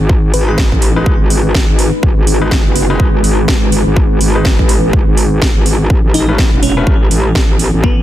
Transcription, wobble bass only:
0.00 G#1
0.34 G#1
0.72 A1
1.06 G#1
1.20 G#1
1.69 G#1
2.03 G#1
2.17 G#1
2.66 F#1
3.00 G#1
3.24 G#1
3.48 G#1
3.87 G#1
4.21 G#1
4.59 A1
4.93 G#1
5.08 G#1
5.42 G#1
5.56 G#1
5.90 A1
6.04 A1
6.53 E1
6.87 A1
7.11 A1
7.35 A1
7.74 A1

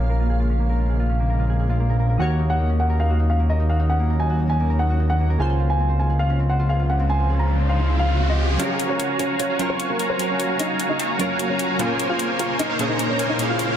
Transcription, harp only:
Already playing: C#4 F4 G#4
0.00 A#3
0.10 A#4
0.20 F4
0.30 G#4
0.40 F4
0.50 C#4
0.60 A#3
0.69 A#4
0.80 F4
0.90 G#4
0.99 F4
1.09 C#4
1.20 A#3
1.30 A#4
1.39 F4
1.50 G#4
1.60 G#4
1.69 F4
1.80 A#3
1.90 A#4
1.99 A#4
2.10 A#4
2.20 A#3
2.30 A#4
2.40 D#4
2.50 F#4
2.59 D#4
2.69 C#4
2.80 A#3
2.90 A#4
3.00 D#4
3.10 F#4
3.20 D#4
3.30 C#4
3.40 A#3
3.50 A#4
3.60 D#4
3.70 F#4
3.80 D#4
3.90 C#4
4.00 A#3
4.10 A#4
4.20 D#4
4.30 F#4
4.40 D#4
4.50 C#4
4.60 A#3
4.70 A#4
4.80 D#4
4.90 F#4
5.00 D#4
5.10 C#4
5.20 A#3
5.30 A#4
5.40 F4
5.50 G#4
5.60 F4
5.70 C#4
5.80 C4
5.90 C5
6.00 F4
6.10 G#4
6.20 F4
6.30 C#4
6.39 C4
6.50 C5
6.59 F4
6.70 G#4
6.80 F4
6.90 C#4
6.99 C4
7.10 C5
7.19 F4
7.29 G#4
7.39 F4
7.49 C#4
7.59 C4
7.69 C5
7.79 F4
7.89 G#4
7.99 F4
8.09 C#4
8.19 C4
8.29 C5
8.39 F4
8.49 G#4

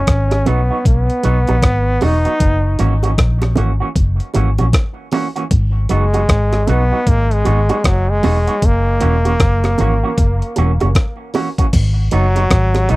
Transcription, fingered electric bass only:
0.08 G#1
0.48 B1
0.86 B1
1.25 B1
1.50 A#1
1.63 G#1
2.03 E1
2.41 F#1
2.81 G#1
3.19 A#1
3.58 G#1
3.96 F#1
4.36 G#1
4.60 A#1
5.52 G#1
5.91 F#1
6.30 G#1
6.69 B1
7.07 G#1
7.47 G#1
7.85 F#1
8.25 E1
8.63 F#1
9.03 E1
9.40 F#1
9.80 G#1
10.18 F#1
10.58 E1
10.83 F#1
11.74 G#1
12.13 F#1
12.51 G#1
12.91 B1

